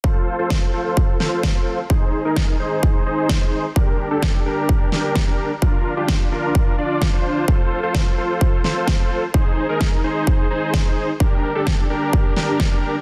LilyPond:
<<
  \new Staff \with { instrumentName = "Supersaw synth" } { \time 4/4 \key f \major \tempo 4 = 129 <f' a' c''>8. <f' a' c''>8. <f' a' c''>4 <f' a' c''>8. <f' a' c''>8 r16 | <ees' aes' c''>8. <ees' aes' bes'>8. <ees' aes' c''>4 <ees' aes' c''>8. <ees' aes' c''>8 r16 | <d' g' bes'>8. <d' g' a'>8. <d' g' bes'>4 <d' g' bes'>8. <d' g' bes'>8 r16 | <d' f' bes'>8. <d' f' g'>8. <d' f' bes'>4 <d' f' d''>8. <d' f' c''>8. |
c''8. <f' a' c''>8. <f' a' c''>4 <f' a' c''>8. <f' a' c''>8 r16 | <ees' aes' c''>8. <ees' aes' bes'>8. <ees' aes' c''>4 <ees' aes' c''>8. <ees' aes' c''>8 r16 | <d' g' bes'>8. <d' g' a'>8. <d' g' bes'>4 <d' g' bes'>8. <d' g' bes'>8 r16 | }
  \new DrumStaff \with { instrumentName = "Drums" } \drummode { \time 4/4 bd4 <bd sn>4 bd8 sn8 <bd sn>4 | bd4 <bd sn>4 bd4 <bd sn>4 | bd4 <bd sn>4 bd8 sn8 <bd sn>4 | bd4 <bd sn>4 bd4 <bd sn>4 |
bd4 <bd sn>4 bd8 sn8 <bd sn>4 | bd4 <bd sn>4 bd4 <bd sn>4 | bd4 <bd sn>4 bd8 sn8 <bd sn>4 | }
>>